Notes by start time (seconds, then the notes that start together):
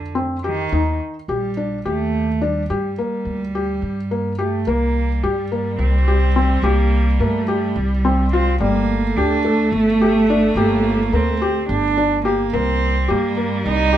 Already playing: F2 D3
0.15 C4
0.44 D#3 G4
0.72 D#2 D#4
1.28 A#1 G4
1.32 G3
1.57 D4
1.85 D#2 A3 G4
2.41 G3 D4
2.70 G2 G3 G4
2.98 A#3
3.25 D2
3.55 G4
3.82 G2
4.11 A#3
4.39 A3 G4
4.67 C2 G3 A#3
5.23 G2 G3 G4
5.52 A#3
5.79 C2 C4
6.08 G4
6.36 C4
6.63 C2 A#3 G4
7.19 G2 A3 A#3
7.48 G4
7.76 C2 G3
8.05 C4
8.33 C4 F4
8.58 G1 G3 A3 A#3
9.16 D2 D4 G4
9.44 A3
9.72 G1 A3
10.01 G4
10.30 D4
10.56 G1 A#3 G4
11.12 D2 A#3 C4
11.42 G4
11.69 G1 D4
11.98 D4
12.25 A#3 G4
12.52 C2 G3 A#3 C4
13.08 G2 A#3 G4
13.37 A#3
13.66 C2 D#4
13.93 G4